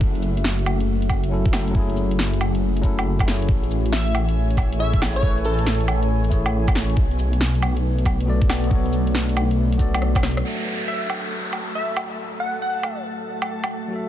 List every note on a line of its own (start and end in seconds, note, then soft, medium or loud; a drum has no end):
0.00 3.48 F#1 medium
0.00 1.30 F#3 medium
0.00 6.93 A3 medium
0.00 1.31 C#4 medium
0.00 1.32 E4 medium
0.00 3.45 F#4 medium
0.00 1.79 G#4 medium
0.00 1.34 A4 medium
0.00 3.45 E5 medium
0.00 kick loud
0.15 closed hi-hat soft
0.23 cabasa medium
0.37 closed hi-hat medium
0.44 snare loud
0.59 closed hi-hat soft
0.66 cabasa medium
0.66 low woodblock medium
0.80 closed hi-hat medium
1.02 closed hi-hat soft
1.09 kick medium
1.09 cabasa medium
1.09 low woodblock soft
1.23 closed hi-hat medium
1.30 1.50 F#3 medium
1.30 1.51 C#4 medium
1.30 1.52 E4 medium
1.30 1.53 A4 medium
1.46 kick loud
1.51 1.70 F#3 medium
1.51 1.72 C#4 medium
1.51 1.74 E4 medium
1.51 1.74 A4 medium
1.51 snare loud
1.51 cabasa medium
1.51 low woodblock medium
1.68 2.80 F#3 medium
1.68 closed hi-hat medium
1.73 2.81 C#4 medium
1.73 2.82 E4 medium
1.73 kick loud
1.79 2.84 G#4 loud
1.90 closed hi-hat soft
1.97 cabasa medium
2.11 closed hi-hat medium
2.19 snare loud
2.34 closed hi-hat soft
2.41 cabasa medium
2.41 low woodblock soft
2.55 closed hi-hat medium
2.77 closed hi-hat soft
2.82 3.24 F#3 loud
2.82 3.25 C#4 medium
2.82 3.24 E4 medium
2.82 kick medium
2.82 cabasa medium
2.86 3.26 A4 loud
2.99 closed hi-hat medium
2.99 low woodblock medium
3.19 kick loud
3.19 closed hi-hat soft
3.19 low woodblock medium
3.23 4.76 A3 medium
3.23 4.77 E4 medium
3.28 4.78 G#4 medium
3.28 4.79 C#5 medium
3.28 snare loud
3.28 cabasa medium
3.42 closed hi-hat medium
3.48 6.95 A1 medium
3.48 6.93 C#5 medium
3.48 6.93 G#5 medium
3.48 kick loud
3.63 closed hi-hat soft
3.71 cabasa medium
3.86 closed hi-hat medium
3.92 4.16 E5 loud
3.92 snare loud
4.07 closed hi-hat soft
4.15 cabasa medium
4.15 low woodblock soft
4.29 closed hi-hat medium
4.50 closed hi-hat soft
4.57 kick medium
4.57 cabasa medium
4.57 low woodblock soft
4.73 closed hi-hat medium
4.77 4.98 A3 medium
4.77 4.99 E4 medium
4.77 5.00 G#4 medium
4.77 5.03 E5 medium
4.82 5.00 C#5 medium
4.93 kick loud
4.99 5.17 A3 medium
4.99 5.20 E4 medium
4.99 5.21 G#4 medium
4.99 5.22 C#5 medium
4.99 snare loud
4.99 cabasa medium
4.99 low woodblock medium
5.16 6.27 A3 medium
5.16 5.38 C#5 medium
5.16 closed hi-hat medium
5.21 6.29 E4 medium
5.21 6.30 A4 medium
5.21 kick loud
5.27 6.32 B4 loud
5.38 closed hi-hat soft
5.45 6.07 A4 loud
5.45 cabasa medium
5.59 closed hi-hat soft
5.67 snare loud
5.81 closed hi-hat soft
5.88 cabasa medium
5.88 low woodblock medium
6.03 closed hi-hat medium
6.24 closed hi-hat soft
6.29 6.42 A3 medium
6.29 6.43 E4 medium
6.29 6.43 G#4 medium
6.29 kick medium
6.29 cabasa medium
6.33 6.44 C#5 medium
6.46 closed hi-hat medium
6.46 low woodblock medium
6.68 kick loud
6.68 closed hi-hat soft
6.68 low woodblock medium
6.75 snare loud
6.75 cabasa medium
6.89 closed hi-hat medium
6.96 10.43 B1 medium
6.96 10.41 A3 medium
6.96 10.41 D4 medium
6.96 10.41 B4 medium
6.96 kick loud
7.11 closed hi-hat soft
7.19 cabasa medium
7.33 closed hi-hat medium
7.41 snare loud
7.55 closed hi-hat soft
7.62 cabasa medium
7.62 low woodblock medium
7.77 closed hi-hat medium
7.98 closed hi-hat soft
8.06 kick medium
8.06 cabasa medium
8.06 low woodblock soft
8.20 closed hi-hat medium
8.26 8.46 B3 medium
8.26 8.47 F#4 medium
8.26 8.48 A4 medium
8.30 8.48 D5 medium
8.42 kick loud
8.47 8.66 B3 medium
8.47 8.69 F#4 medium
8.47 8.70 A4 medium
8.47 snare loud
8.47 cabasa medium
8.47 low woodblock medium
8.51 8.70 D5 medium
8.64 9.76 B3 medium
8.64 closed hi-hat medium
8.70 9.77 F#4 medium
8.70 9.79 A4 medium
8.70 kick loud
8.75 9.80 C#5 loud
8.86 closed hi-hat soft
8.93 cabasa medium
9.07 closed hi-hat medium
9.15 snare loud
9.29 closed hi-hat soft
9.37 cabasa medium
9.37 low woodblock medium
9.51 closed hi-hat medium
9.73 closed hi-hat soft
9.78 9.90 B3 medium
9.78 9.91 F#4 medium
9.78 9.91 A4 medium
9.78 9.92 D5 medium
9.78 kick medium
9.78 cabasa medium
9.95 closed hi-hat medium
9.95 low woodblock medium
10.02 cross-stick medium
10.15 kick loud
10.15 cross-stick medium
10.15 low woodblock medium
10.23 cross-stick medium
10.23 snare loud
10.23 cabasa medium
10.37 13.87 F#3 medium
10.37 cross-stick medium
10.37 closed hi-hat medium
10.43 14.09 A3 medium
10.43 13.89 F#4 medium
10.43 14.09 F#4 medium
10.43 14.09 A4 medium
10.43 13.91 A4 medium
10.43 14.09 E5 medium
10.43 downlifter medium
10.48 13.93 E5 medium
10.88 11.11 E5 medium
11.10 low woodblock soft
11.53 low woodblock soft
11.75 11.98 E5 medium
11.97 low woodblock medium
12.40 12.60 F#5 medium
12.62 12.98 F#5 medium
12.83 low woodblock soft
13.42 low woodblock medium
13.64 low woodblock medium
13.88 14.09 F#3 medium
13.88 14.09 F#4 medium
13.93 14.09 A4 medium
13.93 14.09 E5 medium